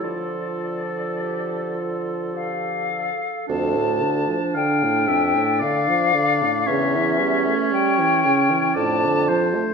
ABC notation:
X:1
M:3/4
L:1/16
Q:1/4=57
K:Dm
V:1 name="Flute"
d8 f4 | a4 g4 f4 | e4 g4 a3 z |]
V:2 name="Oboe"
A8- A2 z2 | z4 f2 e2 d4 | ^c2 c6 d2 =c2 |]
V:3 name="Clarinet"
F4 G2 F2 G2 A2 | D12 | ^C8 D4 |]
V:4 name="French horn" clef=bass
F,8- F,3 z | F,, A,, D, F, D, A,, F,, A,, D, F, D, A,, | ^C, E, G, A, G, E, C, E, A,, D, F, A, |]
V:5 name="Bassoon" clef=bass
D,8- D,2 z2 | D,,4 z8 | E,,4 z4 F,,4 |]